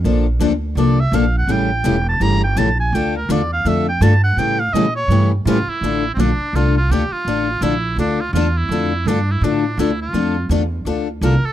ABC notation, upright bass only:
X:1
M:4/4
L:1/8
Q:"Swing" 1/4=166
K:Dm
V:1 name="Upright bass" clef=bass
B,,,2 D,,2 C,,2 B,,,2 | A,,,2 E,,,2 G,,,2 B,,,2 | D,,2 E,,2 F,,2 G,,2 | A,,2 B,,2 G,,2 A,, z |
A,,,2 B,,, z C,,2 D,, z | A,,,2 B,,,2 D,,2 E,,2 | F,,2 G,,2 A,,2 D,,2 | F,,2 E,,2 D,,2 C,, z |]